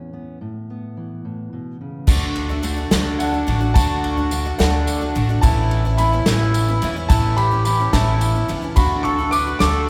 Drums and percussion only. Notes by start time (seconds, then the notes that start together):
2.08 kick, crash, tambourine
2.36 ride
2.63 ride, tambourine
2.91 snare, ride
3.20 ride, tambourine
3.35 tambourine
3.48 ride
3.75 kick, ride, tambourine
4.04 ride
4.31 ride, tambourine
4.60 snare, ride
4.87 ride, tambourine
5.01 tambourine
5.16 ride
5.43 kick, ride, tambourine
5.71 ride
5.98 ride, tambourine
6.26 snare, ride
6.54 ride, tambourine
6.69 tambourine
6.82 ride
7.10 kick, ride, tambourine
7.37 ride, tambourine
7.65 ride, tambourine
7.93 kick, snare, ride
8.07 tambourine
8.21 ride, tambourine
8.35 tambourine
8.49 ride
8.76 kick, ride, tambourine
9.05 ride
9.32 ride, tambourine
9.60 snare, ride